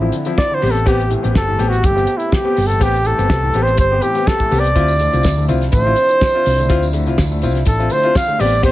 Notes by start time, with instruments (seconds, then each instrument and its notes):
Already playing: french horn section D3 F3 C4 E4
0.01 grand piano F3 C4 E4
0.12 grand piano D3, closed hi-hat
0.25 grand piano F3 C4 E4, closed hi-hat
0.38 grand piano C4 E4, flugelhorn D5, kick, snare
0.51 grand piano D3, flugelhorn C5
0.61 fingered electric bass A1, french horn section C3 A3 B3 G4, grand piano B3 C4 G4, open hi-hat
0.71 flugelhorn A4
0.76 closed hi-hat
0.86 grand piano B3 C4 G4, flugelhorn G4, kick, closed hi-hat
1.01 closed hi-hat
1.10 grand piano A2 E3, closed hi-hat
1.23 fingered electric bass A1, grand piano B3 C4 G4, closed hi-hat
1.35 fingered electric bass G1, grand piano C4 G4, flugelhorn A4, kick, snare
1.48 grand piano A2 E3
1.59 fingered electric bass A1, grand piano B3 C4 G4, closed hi-hat
1.69 flugelhorn F#4, closed hi-hat
1.83 fingered electric bass G1, grand piano A2 E3, flugelhorn G4, kick, closed hi-hat
1.96 grand piano B3 C4 G4, closed hi-hat
2.07 grand piano C4 G4, closed hi-hat
2.17 flugelhorn E4, closed hi-hat
2.32 flugelhorn G4, kick, snare
2.45 grand piano B3 C4 G4
2.57 fingered electric bass G1, open hi-hat
2.67 grand piano A2 E3, flugelhorn A4
2.71 closed hi-hat
2.80 fingered electric bass A1, grand piano B3 C4 G4, flugelhorn G4, kick, closed hi-hat
2.96 closed hi-hat
3.05 grand piano A2 E3, flugelhorn A4, closed hi-hat
3.18 fingered electric bass G1, grand piano B3 C4 G4, closed hi-hat
3.30 fingered electric bass C2, grand piano C4 G4, kick, snare
3.43 grand piano A2 E3
3.54 fingered electric bass A1, grand piano B3 C4 G4, closed hi-hat
3.63 flugelhorn C5
3.67 closed hi-hat
3.77 fingered electric bass G1, flugelhorn C5, kick, closed hi-hat
3.91 grand piano B3 C4 G4
4.02 grand piano A2 E3, flugelhorn G4, closed hi-hat
4.15 grand piano B3 C4 G4, closed hi-hat
4.27 grand piano C4 G4, flugelhorn A4, kick, snare
4.39 grand piano A2 E3, kick, closed hi-hat
4.51 fingered electric bass C2, grand piano B3 C4 G4, open hi-hat
4.59 flugelhorn D5
4.65 closed hi-hat
4.75 fingered electric bass D2, french horn section F3 D4 E4, grand piano C4 E4 F4, kick, closed hi-hat
4.88 tambourine
4.99 grand piano D3 A3, closed hi-hat, tambourine
5.13 fingered electric bass C2, grand piano C4 E4 F4, closed hi-hat, tambourine
5.23 fingered electric bass D2, grand piano E4 F4, kick, snare, tambourine
5.37 grand piano D3 A3, tambourine
5.49 fingered electric bass C2, grand piano C4 E4 F4, closed hi-hat, tambourine
5.61 snare, closed hi-hat, tambourine
5.72 fingered electric bass A1, grand piano D3 A3, flugelhorn C5, kick, closed hi-hat, tambourine
5.86 grand piano C4 E4 F4, closed hi-hat
5.96 grand piano E4 F4, closed hi-hat, tambourine
6.09 closed hi-hat
6.21 kick, snare, tambourine
6.34 grand piano C4 E4 F4
6.46 fingered electric bass C2, open hi-hat, tambourine
6.59 grand piano D3 A3, closed hi-hat, tambourine
6.69 fingered electric bass D2, grand piano C4 E4 F4, kick, closed hi-hat
6.83 tambourine
6.93 grand piano D3 A3, closed hi-hat, tambourine
7.07 fingered electric bass C2, grand piano C4 E4 F4, closed hi-hat
7.18 fingered electric bass D2, kick, snare, tambourine
7.31 grand piano D3 A3, tambourine
7.42 fingered electric bass C2, grand piano C4 E4 F4, closed hi-hat, tambourine
7.55 snare, closed hi-hat
7.65 fingered electric bass A1, flugelhorn A4, kick, closed hi-hat, tambourine
7.79 grand piano C4 E4 F4, closed hi-hat
7.90 grand piano D3 A3, flugelhorn C5, closed hi-hat, tambourine
8.03 grand piano C4 E4 F4, closed hi-hat
8.15 grand piano E4 F4, flugelhorn F5, kick, snare, tambourine
8.27 grand piano D3 A3, closed hi-hat
8.39 fingered electric bass A1, french horn section A3 B3 G4, grand piano B3 C4 G4, flugelhorn D5, open hi-hat, tambourine
8.53 closed hi-hat, tambourine
8.63 grand piano B3 C4 G4, flugelhorn C5, kick, closed hi-hat